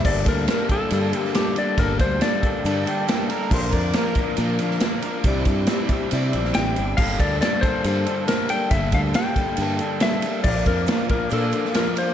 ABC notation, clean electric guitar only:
X:1
M:4/4
L:1/8
Q:1/4=138
K:Gdor
V:1 name="Clean electric guitar"
[G,,D,G,B,DA] [G,B,DA] [G,B,DA] [G,,D,G,B,DA] [G,B,DA] [G,,D,G,B,DA] [G,B,DA] [G,B,DA] | [G,,D,G,B,DA] [G,B,DA] [G,B,DA] [G,,D,G,B,DA] [G,B,DA] [G,,D,G,B,DA] [G,B,DA] [G,B,DA] | [B,,D,F,B,DB] [F,B,DB] [F,B,DB] [B,,D,F,B,DB] [F,B,DB] [B,,D,F,B,DB] [F,B,DB] [F,B,DB] | [C,G,CDE] [CDE] [G,CDE] [C,G,CDE] [G,CDE] [C,G,CDE] [G,CDE] [CDE] |
[G,,D,G,B,DA] [G,B,DA] [G,B,DA] [G,,D,G,B,DA] [G,B,DA] [G,,D,G,B,DA] [G,B,DA] [G,B,DA] | [G,,D,G,B,DA] [G,B,DA] [G,B,DA] [G,,D,G,B,DA] [G,B,DA] [G,,D,G,B,DA] [G,B,DA] [G,B,DA] | [B,,F,B,DF] [B,DF] [F,B,DF] [B,,F,B,DF] [F,B,DF] [B,,F,B,DF] [F,B,DF] [B,DF] |]